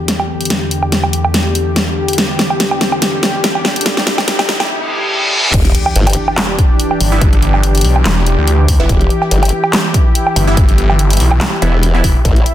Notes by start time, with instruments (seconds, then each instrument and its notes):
Already playing: analog synth pad E2 D3 G4, riser
0.08 snare, closed hi-hat
0.20 low woodblock
0.41 closed hi-hat
0.45 closed hi-hat
0.50 snare, closed hi-hat
0.71 closed hi-hat
0.83 low woodblock
0.92 snare, closed hi-hat
1.04 low woodblock
1.13 closed hi-hat
1.25 low woodblock
1.34 snare, closed hi-hat
1.55 closed hi-hat
1.76 snare, closed hi-hat
2.08 closed hi-hat
2.13 closed hi-hat
2.18 snare, closed hi-hat
2.39 snare, closed hi-hat
2.50 low woodblock
2.60 snare, closed hi-hat
2.71 low woodblock
2.81 snare, closed hi-hat
2.92 low woodblock
3.02 snare, closed hi-hat
3.23 snare, closed hi-hat
3.44 snare, closed hi-hat
3.55 low woodblock
3.65 snare
3.76 closed hi-hat
3.81 closed hi-hat
3.86 snare, closed hi-hat
3.97 snare
4.07 snare, closed hi-hat
4.18 snare, low woodblock
4.28 snare, closed hi-hat
4.39 snare, low woodblock
4.49 snare, closed hi-hat
4.60 snare, low woodblock
4.70 reverse cymbal
5.54 wobble bass E1, analog synth pad E3 D4 G4, kick, closed hi-hat, crash, sub drop
5.65 closed hi-hat
5.75 closed hi-hat
5.86 low woodblock
5.96 wobble bass G1, closed hi-hat
6.07 closed hi-hat, low woodblock
6.10 closed hi-hat
6.13 closed hi-hat
6.28 low woodblock
6.38 snare, clap, closed hi-hat
6.59 kick, closed hi-hat
6.80 closed hi-hat
6.91 low woodblock
7.00 detuned saw bass G1, open hi-hat
7.12 supersaw synth E3 B3 E4
7.21 kick, closed hi-hat
7.33 closed hi-hat
7.42 closed hi-hat
7.54 low woodblock
7.63 closed hi-hat
7.75 closed hi-hat
7.77 closed hi-hat
7.81 detuned saw bass B1, closed hi-hat, open hi-hat
7.96 low woodblock
8.05 detuned saw bass E1, snare, clap, closed hi-hat
8.27 closed hi-hat
8.38 detuned saw bass D2
8.47 closed hi-hat
8.68 kick, open hi-hat
8.80 wobble bass F#1, supersaw synth E3 B3 E4
8.89 wobble bass E1, analog synth pad E4, kick, closed hi-hat
9.01 closed hi-hat
9.10 closed hi-hat
9.22 low woodblock
9.31 wobble bass G1, closed hi-hat
9.43 closed hi-hat, low woodblock
9.45 closed hi-hat
9.49 closed hi-hat
9.64 low woodblock
9.73 snare, clap, closed hi-hat
9.94 kick, closed hi-hat
10.15 closed hi-hat
10.27 low woodblock
10.36 detuned saw bass G1, open hi-hat
10.47 supersaw synth E3 B3 E4
10.57 kick, closed hi-hat
10.69 closed hi-hat
10.78 closed hi-hat
10.90 low woodblock
10.99 closed hi-hat
11.10 closed hi-hat
11.13 closed hi-hat
11.17 detuned saw bass B1, closed hi-hat, open hi-hat
11.31 low woodblock
11.41 snare, clap, closed hi-hat
11.62 wobble bass E1, supersaw synth E3 B3 E4, closed hi-hat
11.83 closed hi-hat
11.94 supersaw synth E3 B3 E4
12.04 detuned saw bass E1, kick, open hi-hat
12.25 wobble bass A1, analog synth pad A3 C4, kick, closed hi-hat
12.36 closed hi-hat
12.46 closed hi-hat